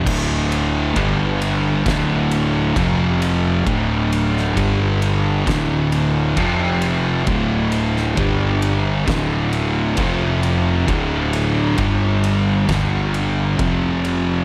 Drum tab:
CC |x---------------|----------------|----------------|----------------|
RD |--x-x-x-x-x-x-x-|x-x-x-x-x-x-x-x-|x-x-x-x-x-x-x-x-|x-x-x-x-x-x-x-x-|
SD |--------o-------|---o----o-------|---o----o-------|--------o-------|
BD |o---o---o---o---|o---o---o---o---|o---o---o---o---|o---o---o---o---|